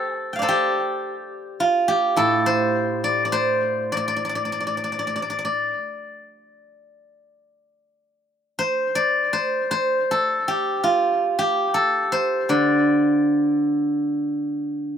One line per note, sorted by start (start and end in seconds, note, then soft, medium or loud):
0.00 0.42 A4 medium
0.00 0.41 C5 medium
0.33 2.02 F5 soft
0.33 1.88 G5 soft
0.39 2.17 A4 soft
0.39 2.40 C5 soft
0.39 2.24 D5 soft
0.48 1.88 G4 medium
1.60 4.13 F4 medium
1.88 4.24 G4 medium
2.16 5.69 A2 soft
2.16 4.37 A4 medium
2.46 3.32 C5 medium
3.04 3.25 D5 medium
3.25 3.92 D5 soft
3.32 5.30 C5 medium
3.92 3.96 D5 medium
3.97 4.07 D5 soft
4.08 4.16 D5 medium
4.16 4.24 D5 soft
4.25 4.29 D5 soft
4.29 4.35 D5 soft
4.35 4.45 D5 soft
4.45 4.52 D5 soft
4.52 4.60 D5 soft
4.60 4.66 D5 soft
4.67 4.77 D5 soft
4.77 4.83 D5 soft
4.84 4.92 D5 soft
4.92 4.99 D5 soft
4.99 5.07 D5 soft
5.07 5.15 D5 soft
5.16 5.22 D5 soft
5.22 5.29 D5 soft
5.30 5.38 D5 soft
5.39 5.44 D5 soft
5.45 7.29 D5 soft
8.59 9.33 C5 medium
8.95 10.80 D5 medium
9.33 9.71 C5 medium
9.71 11.69 C5 medium
10.11 11.74 A4 medium
10.48 11.38 G4 medium
10.84 13.36 F4 medium
11.39 13.74 G4 medium
11.74 13.94 A4 medium
12.12 14.10 C5 medium
12.49 14.98 D3 soft
12.49 14.98 D5 medium